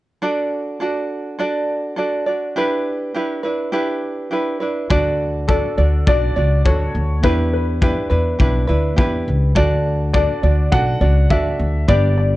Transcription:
0.22 D4 F#4 A4 D5
0.80 D4 F#4 A4 D5
1.39 D4 F#4 A4 D5
1.96 D4 F#4 A4 D5
2.27 D4 F#4 D5
2.56 D4 E4 G4 B4
3.15 D4 E4 G4 B4
3.43 D4 E4 B4
3.72 D4 E4 G4 B4
4.31 D4 E4 G4 B4
4.60 D4 E4 B4
4.90 D2 D4 F#4 A4 D5, kick
5.48 D4 F#4 A4 D5, kick
5.78 D2 D4 F#4 D5
6.07 B1 D4 F#4 A4 D5, kick
6.36 C#2 D4 F#4 D5
6.65 D2 D4 F#4 A4 C#5, kick
6.95 D2
7.23 E2 D4 E4 G4 B4, kick
7.53 B4
7.81 D4 E4 G4 B4, kick
8.10 E2 D4 E4 B4
8.39 B1 D4 E4 G4 B4, kick
8.68 D2 D4 E4 B4
8.96 E2 D4 E4 G4 B4, kick
9.28 C#2
9.55 D2 D4 F#4 A4 D5, kick
10.14 D4 F#4 A4 D5, kick
10.43 D2 D4 F#4 D5
10.72 B1 D4 F#4 A4 D5 F#5, kick
11.01 C#2 D4 F#4 D5
11.30 D2 D4 F#4 A4 D5 E5, kick
11.59 D2
11.88 G1 D4 G4 B4 D5, kick
12.18 D5

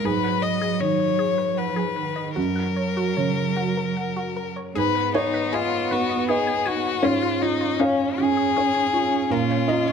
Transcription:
0.04 G#2 F#3 G#4 B4
0.23 F#5
0.42 D#5
0.61 G#4
0.80 D#3 C#5 D#5
1.19 G#4
1.38 B4
1.57 F3 B4 F#5
1.76 G#4
1.96 D#3 B4
2.16 D#5
2.36 F#2 F#3 F#4 A#4
2.56 F#5
2.76 C#5
2.97 F#4
3.17 C#3 C#5
3.56 F#4
3.77 A#4
3.97 F#5
4.17 F#4
4.37 A#4
4.56 C#5
4.75 G#2 B3 G#4 B4
4.95 B4
5.14 D#4 C#5 G#5
5.34 B4
5.53 F4 G#4 D#5
5.91 B3 F#4 B4
6.10 D#5
6.28 G#4 B4 D#5
6.47 G#5
6.65 D#4 F#4 G#5
7.03 G#2 C#4 F4 C#5
7.23 F4
7.41 D#4 F4 C#5
7.61 F4
7.80 C#4 C#5 F5
8.18 C#4 F4 G#4
8.37 G#4
8.56 C#4 C#5
8.74 C#5
8.93 F4 C#5
9.30 A#2 F4 A#4
9.51 C#5
9.68 F4 D#5 A#5
9.87 C#5

